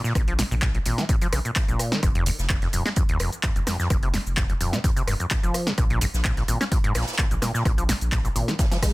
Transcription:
0.04 acid bass A#2, snare, shaker
0.15 sub bass A#1, kick, cross-stick, closed hi-hat, shaker
0.28 acid bass F3, closed hi-hat
0.39 acid bass A#2, snare, closed hi-hat, open hi-hat, shaker
0.51 sub bass A#1, acid bass A#2, shaker
0.61 acid bass A#2, kick, snare, clap, closed hi-hat, shaker
0.75 acid bass A#2, closed hi-hat
0.86 sub bass G#1, acid bass A#2, closed hi-hat, open hi-hat, shaker
0.98 acid bass F3, snare, closed hi-hat, shaker
1.09 acid bass A#2, kick, closed hi-hat, shaker
1.21 acid bass F3, closed hi-hat, shaker
1.33 sub bass A#1, acid bass C#3, cross-stick, closed hi-hat, open hi-hat, shaker
1.45 acid bass A#2, closed hi-hat, shaker
1.56 kick, snare, clap, closed hi-hat, shaker
1.68 sub bass A#1, acid bass A#2, closed hi-hat, shaker
1.79 cross-stick, closed hi-hat, open hi-hat, shaker
1.92 acid bass D#3, snare, shaker
2.03 sub bass F1, acid bass F2, kick, cross-stick, closed hi-hat, shaker
2.15 acid bass F2, closed hi-hat
2.26 acid bass D#2, closed hi-hat, open hi-hat, shaker
2.38 sub bass F1, snare, shaker
2.49 acid bass F2, kick, snare, clap, closed hi-hat, shaker
2.62 acid bass F2, snare, closed hi-hat
2.73 sub bass D#1, acid bass F2, closed hi-hat, open hi-hat, shaker
2.86 acid bass G#3, snare, shaker
2.96 acid bass F2, kick, closed hi-hat, shaker
3.09 acid bass D#2, closed hi-hat
3.19 sub bass F1, acid bass F2, cross-stick, closed hi-hat, open hi-hat, shaker
3.32 closed hi-hat, shaker
3.43 acid bass F2, kick, snare, clap, closed hi-hat, shaker
3.56 sub bass F1, acid bass F2, closed hi-hat, shaker
3.67 acid bass F2, cross-stick, snare, closed hi-hat, open hi-hat, shaker
3.79 acid bass F2, snare, shaker
3.90 sub bass F1, acid bass F2, kick, cross-stick, closed hi-hat, shaker
4.03 acid bass C3, closed hi-hat
4.13 acid bass F2, snare, closed hi-hat, open hi-hat, shaker
4.26 sub bass F1, shaker
4.37 acid bass F2, kick, snare, clap, closed hi-hat, shaker
4.50 acid bass F2, closed hi-hat
4.61 sub bass D#1, acid bass F2, closed hi-hat, open hi-hat, shaker
4.73 acid bass C3, snare, closed hi-hat, shaker
4.84 acid bass F2, kick, closed hi-hat, shaker
4.96 acid bass C3, closed hi-hat, shaker
5.07 sub bass F1, acid bass G2, cross-stick, closed hi-hat, open hi-hat, shaker
5.20 acid bass F2, closed hi-hat, shaker
5.31 acid bass F2, kick, snare, clap, closed hi-hat, shaker
5.43 sub bass F1, acid bass F3, closed hi-hat, shaker
5.54 cross-stick, closed hi-hat, open hi-hat, shaker
5.67 acid bass C3, snare, shaker
5.78 sub bass A#1, acid bass A#2, kick, cross-stick, closed hi-hat, shaker
5.90 acid bass A#2, closed hi-hat
6.01 acid bass G#2, closed hi-hat, open hi-hat, shaker
6.14 sub bass A#1, snare, shaker
6.25 acid bass A#2, kick, snare, clap, closed hi-hat, shaker
6.37 acid bass A#2, snare, closed hi-hat
6.48 sub bass G#1, acid bass A#2, closed hi-hat, open hi-hat, shaker
6.60 acid bass C#4, snare, closed hi-hat, shaker
6.72 acid bass A#2, kick, closed hi-hat, shaker
6.84 acid bass G#2, closed hi-hat
6.94 sub bass A#1, acid bass A#2, cross-stick, snare, closed hi-hat, open hi-hat, shaker
7.01 snare, closed hi-hat
7.08 snare, closed hi-hat, shaker
7.13 snare, closed hi-hat
7.18 acid bass A#2, kick, clap, closed hi-hat, shaker
7.31 sub bass A#1, acid bass A#2, closed hi-hat, shaker
7.42 acid bass A#2, cross-stick, snare, closed hi-hat, open hi-hat, shaker
7.54 acid bass A#2, snare, shaker
7.65 sub bass A#1, kick, cross-stick, closed hi-hat, shaker
7.78 acid bass F3, closed hi-hat, shaker
7.89 acid bass A#2, snare, closed hi-hat, open hi-hat, shaker
8.01 sub bass A#1, closed hi-hat, shaker
8.12 acid bass A#2, kick, snare, clap, closed hi-hat, shaker
8.25 acid bass A#2, closed hi-hat, shaker
8.36 sub bass G#1, acid bass A#2, closed hi-hat, open hi-hat, shaker
8.48 acid bass F3, snare, closed hi-hat, shaker
8.59 acid bass A#2, kick, snare, closed hi-hat, shaker
8.71 acid bass F3, snare, closed hi-hat, shaker
8.82 sub bass A#1, acid bass G#3, kick, cross-stick, snare, closed hi-hat, open hi-hat, shaker

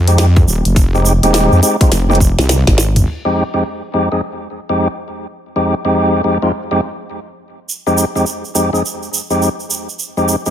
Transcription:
Already playing: wobble bass F2
0.08 tonewheel organ G#3 C4 D#4 G4, closed hi-hat, shaker
0.18 snare, closed hi-hat, shaker
0.36 kick, shaker
0.47 wobble bass D#1, shaker
0.65 wobble bass F1, closed hi-hat, shaker
0.76 kick, closed hi-hat, shaker
0.94 tonewheel organ G#3 C4 D#4 G4, shaker
1.05 shaker
1.23 wobble bass D#1, tonewheel organ G#3 C4 D#4 G4, closed hi-hat, shaker
1.34 snare, closed hi-hat, shaker
1.52 wobble bass F2, shaker
1.63 tonewheel organ G#3 C4 D#4 G4, closed hi-hat, shaker
1.81 tonewheel organ G#3 C4 D#4 F4, kick, closed hi-hat, shaker
1.92 wobble bass F1, snare, closed hi-hat, shaker
2.10 tonewheel organ G#3 C4 D#4 G4, high tom, shaker
2.15 closed hi-hat
2.20 kick, shaker
2.39 wobble bass C2, snare, shaker
2.49 snare, closed hi-hat, shaker
2.67 wobble bass G#1, kick, snare, shaker
2.78 snare, shaker
2.96 closed hi-hat, mid tom, shaker
3.07 crash
3.25 tonewheel organ F2 G#3 C4 D#4 G4
3.54 tonewheel organ F2 G#3 C4 D#4 G4
3.94 tonewheel organ F2 G#3 C4 D#4 G4
4.12 tonewheel organ F2 G#3 C4 D#4 G#4
4.69 tonewheel organ F2 G#3 C4 D#4 G4
5.56 tonewheel organ F2 G#3 C4 D#4 G4
5.85 tonewheel organ F2 G#3 C4 D#4 G4
6.24 tonewheel organ F2 G#3 C4 D#4 G4
6.42 tonewheel organ F2 G#3 C4 D#4 F4
6.71 tonewheel organ F2 G#3 C4 D#4 G4
7.69 shaker
7.87 tonewheel organ F2 G#3 C4 D#4 G4, shaker
7.98 shaker
8.15 tonewheel organ F2 G#3 C4 D#4 G4, shaker
8.26 shaker
8.45 shaker
8.55 tonewheel organ F2 G#3 C4 D#4 G4, shaker
8.73 tonewheel organ F2 G#3 C4 D#4 G#4, shaker
8.85 shaker
9.03 shaker
9.14 shaker
9.30 tonewheel organ F2 G#3 C4 D#4 G4, shaker
9.42 shaker
9.60 shaker
9.70 shaker
9.89 shaker
9.99 shaker
10.17 tonewheel organ F2 G#3 C4 D#4 G4, shaker
10.28 shaker
10.46 tonewheel organ F2 G#3 C4 D#4 G4, shaker

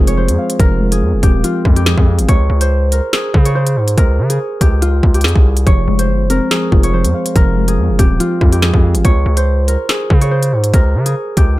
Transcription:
Already playing: 808-style bass F1, synth keys F3 G#3 C4 F4, harp F4 G#4 A#4 C5
0.07 harp C#5, closed hi-hat
0.17 synth keys F3, harp C5
0.28 808-style bass F2, closed hi-hat
0.38 synth keys F5
0.50 closed hi-hat
0.59 808-style bass F1, synth keys F3, harp A#4, kick, closed hi-hat
0.81 synth keys G#3
0.92 harp G#4, closed hi-hat
1.02 808-style bass F2
1.13 808-style bass F1
1.23 808-style bass D#1, synth keys C4, harp G4, kick, closed hi-hat
1.44 synth keys F3, harp F4, closed hi-hat
1.65 808-style bass F2, synth keys F4, kick
1.76 harp G4, closed hi-hat
1.86 synth keys F3, harp G#4, snare, closed hi-hat
1.98 808-style bass F2, kick
2.07 synth keys F5
2.19 808-style bass G#1, closed hi-hat
2.29 808-style bass C#2, harp C#5, kick, closed hi-hat
2.50 808-style bass C#2
2.61 harp C5, closed hi-hat
2.92 harp A#4, closed hi-hat
3.13 harp G#4, snare, closed hi-hat
3.34 808-style bass C#3, kick
3.45 harp C#5, closed hi-hat
3.55 harp C5
3.67 closed hi-hat
3.76 808-style bass G#2
3.88 closed hi-hat
3.98 808-style bass C#2, harp A#4, kick, closed hi-hat
4.19 808-style bass C#3
4.30 harp G#4, closed hi-hat
4.61 808-style bass C#2, harp G4, kick, closed hi-hat
4.82 harp F4, closed hi-hat
5.03 808-style bass C#2, kick
5.14 harp G4, closed hi-hat
5.21 808-style bass F2, harp G#4, snare, closed hi-hat
5.28 closed hi-hat
5.36 808-style bass C2, kick
5.57 closed hi-hat
5.67 808-style bass F1, synth keys F3, harp C#5, kick, closed hi-hat
5.88 808-style bass F1, synth keys G#3
5.99 harp C5, closed hi-hat
6.09 808-style bass G1
6.25 808-style bass F1
6.30 synth keys C4, harp A#4, closed hi-hat
6.51 synth keys F3, harp G#4, snare, closed hi-hat
6.72 808-style bass F1, synth keys F4, kick
6.83 harp C#5, closed hi-hat
6.93 synth keys F3, harp C5
7.05 808-style bass F2, closed hi-hat
7.14 synth keys F5
7.26 closed hi-hat
7.36 808-style bass F1, synth keys F3, harp A#4, kick, closed hi-hat
7.57 synth keys G#3
7.68 harp G#4, closed hi-hat
7.78 808-style bass F2
7.89 808-style bass F1
7.99 808-style bass D#1, synth keys C4, harp G4, kick, closed hi-hat
8.20 synth keys F3, harp F4, closed hi-hat
8.41 808-style bass F2, synth keys F4, kick
8.52 harp G4, closed hi-hat
8.62 synth keys F3, harp G#4, snare, closed hi-hat
8.74 808-style bass F2, kick
8.83 synth keys F5
8.95 808-style bass G#1, closed hi-hat
9.05 808-style bass C#2, harp C#5, kick, closed hi-hat
9.26 808-style bass C#2
9.37 harp C5, closed hi-hat
9.68 harp A#4, closed hi-hat
9.89 harp G#4, snare, closed hi-hat
10.10 808-style bass C#3, kick
10.21 harp C#5, closed hi-hat
10.31 harp C5
10.43 closed hi-hat
10.53 808-style bass G#2
10.64 closed hi-hat
10.74 808-style bass C#2, harp A#4, kick, closed hi-hat
10.95 808-style bass C#3
11.06 harp G#4, closed hi-hat
11.37 808-style bass C#2, harp G4, kick, closed hi-hat

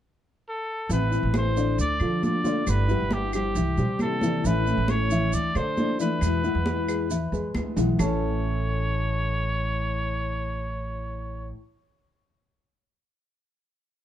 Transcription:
0.49 trumpet A4
0.89 upright bass A1, nylon-string guitar C3 E3 B3 C4 E4, grand piano E3 E4 E5, trumpet B4, high conga, maracas
1.11 nylon-string guitar E3 C4 E4, high conga, maracas
1.23 upright bass A1
1.34 grand piano A3 A4 B4, trumpet C5, high conga, claves, maracas
1.56 grand piano D3 D4 D5, high conga, maracas
1.78 upright bass D2, trumpet D5, muted nylon-string guitar stroke, high conga, maracas
2.00 upright bass D3, grand piano F3 F4 A4, high conga, claves, maracas
2.22 nylon-string guitar D3 A3 D4 F4, trumpet D5, high conga, maracas
2.44 grand piano D3 D4 D5, nylon-string guitar A3 D4 F4, high conga, maracas
2.66 upright bass G1, nylon-string guitar G3 B3 E4, trumpet B4, high conga, claves, maracas
2.88 grand piano G3 G4 B4, nylon-string guitar B3 E4, high conga, maracas
3.00 upright bass G1
3.11 trumpet G4, high conga, maracas
3.33 grand piano G3 G4 C5, trumpet G4, high conga, claves, maracas
3.55 upright bass C2, grand piano E3 E4 E5, muted nylon-string guitar stroke, high conga, maracas
3.77 upright bass C3, grand piano G3 G4 C5, high conga, maracas
3.99 nylon-string guitar E3 G3 C4 E4, trumpet A4, high conga, claves, maracas
4.21 grand piano E3 E4 E5, nylon-string guitar E3 G3 C4 E4, high conga, maracas
4.44 upright bass A1, nylon-string guitar E3 A3 C#4 E4, grand piano E3 E4 E5, trumpet B4, high conga, maracas
4.66 nylon-string guitar A3 C#4 E4, high conga, maracas
4.77 upright bass A1
4.88 grand piano A3 A4 C#5, trumpet C#5, high conga, claves, maracas
5.11 grand piano E3 E4 E5, high conga, maracas
5.33 upright bass D2, trumpet D5, muted nylon-string guitar stroke, high conga, maracas
5.55 upright bass D3, grand piano A3 A4 D5, trumpet C5, high conga, claves, maracas
5.76 nylon-string guitar F3 A3 D4 E4, high conga, maracas
5.99 grand piano E3 E4 E5, nylon-string guitar F3 A3 D4 E4, trumpet B4, maracas
6.21 upright bass E2, nylon-string guitar B2 E3 G#3 B3 E4, high conga, claves, maracas
6.44 nylon-string guitar E3 G#3 B3 E4, grand piano G#3 G#4 B4, high conga, maracas
6.55 upright bass E2
6.66 high conga, maracas
6.88 grand piano G#3 G#4 B4, high conga, claves, maracas
7.10 grand piano E3 E4 E5, muted nylon-string guitar stroke, high conga, maracas
7.32 upright bass E2, grand piano G#3 G#4 B4, high conga, maracas
7.54 upright bass D2, nylon-string guitar E3 G#3 B3 E4, high conga, claves, maracas
7.76 upright bass B1, grand piano E3 E4 E5, nylon-string guitar E3 G#3 B3 E4, low conga, maracas
7.99 upright bass A1, nylon-string guitar A2 E3 A3 C#4 E4, grand piano A3 E4 A4 C#5 E5 A5, trumpet C#5, low conga, claves, maracas

